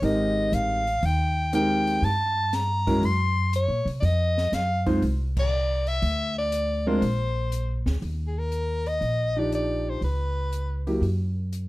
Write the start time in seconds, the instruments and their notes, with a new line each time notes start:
0.02 upright bass G#1, grand piano G#3 C4 D#4 G4 A#4, soprano saxophone D#5, open hi-hat
0.52 upright bass A1, soprano saxophone F5, closed hi-hat
0.87 open hi-hat
1.03 upright bass D#2, soprano saxophone G5, open hi-hat
1.53 grand piano G#3 C4 D#4 G4 A#4, soprano saxophone G5, closed hi-hat
1.87 open hi-hat
2.02 upright bass G2, soprano saxophone A5, open hi-hat
2.53 soprano saxophone A#5, snare, closed hi-hat
2.87 grand piano G#3 C#4 E4 F#4 A#4, kick, open hi-hat
3.02 upright bass F#2, soprano saxophone C6, open hi-hat
3.53 soprano saxophone C#5, closed hi-hat
3.68 upright bass A#2
3.85 upright bass C3, open hi-hat
4.00 upright bass F2, soprano saxophone D5, open hi-hat
4.05 soprano saxophone D#5
4.38 snare
4.52 upright bass F#2, soprano saxophone F5, snare, closed hi-hat
4.86 grand piano G#3 C4 D#4 F4 C5, kick, open hi-hat
5.02 upright bass C2, open hi-hat
5.37 soprano saxophone D5, kick, crash
5.87 soprano saxophone E5, open hi-hat
6.02 upright bass D2, open hi-hat
6.38 soprano saxophone D5
6.52 closed hi-hat
6.87 grand piano G#3 C4 D4 F4 A#4, soprano saxophone C5
7.02 upright bass A#1, open hi-hat
7.52 closed hi-hat
7.86 upright bass D2, snare
8.02 upright bass D#2, open hi-hat
8.27 soprano saxophone G#4
8.38 soprano saxophone A#4
8.52 closed hi-hat
8.86 soprano saxophone D#5, open hi-hat
9.01 upright bass A#1, open hi-hat
9.36 grand piano F3 D4 D#4 G4, soprano saxophone D5
9.52 soprano saxophone D5, closed hi-hat
9.89 soprano saxophone C5
10.01 upright bass C#2, soprano saxophone B4, open hi-hat
10.52 closed hi-hat
10.87 grand piano F#3 A#3 E4 G4, open hi-hat
11.01 upright bass F#2, open hi-hat
11.53 closed hi-hat